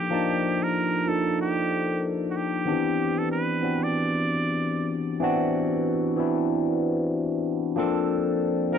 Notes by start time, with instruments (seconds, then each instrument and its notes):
Already playing: tine electric piano F3 A#3 D4 D#4 A4 A#4, muted trumpet G4
0.10 tine electric piano F3 A#3 D4 D#4 A5
0.63 muted trumpet A#4
1.06 tine electric piano F3 A#3 D4 D#4 A4, muted trumpet A4
1.41 muted trumpet G4
2.30 muted trumpet F#4
2.36 muted trumpet G4
2.65 tine electric piano D#3 B3 C4 D4 G4
2.71 tine electric piano E3
3.18 muted trumpet A4
3.32 muted trumpet B4
3.61 tine electric piano E3 B3 C4 D4 F#4
3.83 muted trumpet D5
5.20 tine electric piano E3 B3 C4 D4 F#4
6.16 tine electric piano E3 B3 C4 D4 E4
7.76 tine electric piano F3 A#3 C4 D4 A4
8.71 tine electric piano F3 A#3 C4 C#4 C5, muted trumpet A#4